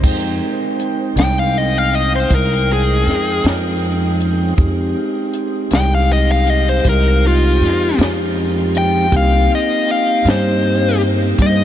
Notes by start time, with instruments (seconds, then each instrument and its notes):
0.04 upright bass F2, tonewheel organ G#3 C4 D#4 G5, kick, closed hi-hat, crash
0.80 closed hi-hat
1.16 upright bass C2, lead electric guitar G5, snare, closed hi-hat
1.39 lead electric guitar F5
1.58 lead electric guitar D#5
1.78 lead electric guitar F5
1.93 lead electric guitar D#5, closed hi-hat
2.16 lead electric guitar C5
2.30 upright bass C2, kick, closed hi-hat
2.35 lead electric guitar A#4
2.73 lead electric guitar G#4
3.06 upright bass F2, snare, closed hi-hat
3.44 upright bass F2, snare, closed hi-hat
4.20 closed hi-hat
4.57 upright bass F2, tonewheel organ G#3 C4 D#4 G4, kick, closed hi-hat
5.34 closed hi-hat
5.71 upright bass C2, lead electric guitar G5, snare, closed hi-hat
5.95 lead electric guitar F5
6.13 lead electric guitar D#5
6.32 lead electric guitar F5
6.47 lead electric guitar D#5, closed hi-hat
6.69 lead electric guitar C5
6.85 upright bass C2, kick, closed hi-hat
6.89 lead electric guitar A#4
7.27 lead electric guitar F4
7.60 upright bass F2, closed hi-hat
7.65 snare
7.98 upright bass F2, snare, closed hi-hat
8.75 lead electric guitar G5, closed hi-hat
9.11 upright bass C2, tonewheel organ A#3 C4 D#4 G4, kick, closed hi-hat
9.17 lead electric guitar F5
9.55 lead electric guitar D#5
9.88 lead electric guitar F5, closed hi-hat
10.25 upright bass G2, snare, closed hi-hat
10.30 lead electric guitar C5
11.01 closed hi-hat
11.38 upright bass G2, lead electric guitar D#5, kick, closed hi-hat